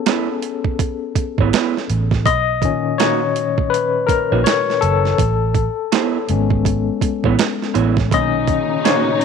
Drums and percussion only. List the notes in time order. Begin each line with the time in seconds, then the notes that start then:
0.06 snare, closed hi-hat
0.42 closed hi-hat
0.64 kick
0.79 kick, closed hi-hat
1.15 kick, closed hi-hat
1.38 kick
1.53 snare, closed hi-hat
1.77 snare
1.90 closed hi-hat
2.11 kick, snare
2.26 kick, closed hi-hat
2.62 kick, closed hi-hat
3.00 snare, closed hi-hat
3.36 closed hi-hat
3.58 kick
3.74 closed hi-hat
4.09 kick, closed hi-hat
4.46 snare, closed hi-hat
4.70 snare
4.82 closed hi-hat
5.05 snare
5.18 kick, closed hi-hat
5.55 kick, closed hi-hat
5.92 snare, closed hi-hat
6.29 closed hi-hat
6.50 kick
6.65 kick, closed hi-hat
7.01 kick, closed hi-hat
7.24 kick
7.39 snare, closed hi-hat
7.62 snare
7.75 closed hi-hat
7.97 kick, snare
8.11 kick, closed hi-hat
8.48 kick, closed hi-hat
8.85 snare, closed hi-hat
9.21 closed hi-hat